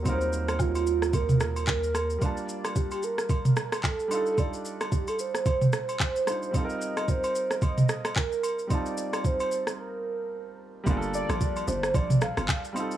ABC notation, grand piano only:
X:1
M:4/4
L:1/8
Q:"Swing 16ths" 1/4=111
K:Gm
V:1 name="Grand piano"
[^F,G,CE=FB]8 | [G,B,DFa]6- [G,B,DFa] [G,DEFA]- | [G,DEFA]6- [G,DEFA] [G,DEFc] | [G,CEFAB]8 |
[G,CEFa]8 | [G,B,DF_A=A]6- [G,B,DF_A=A] [G,CEFA] |]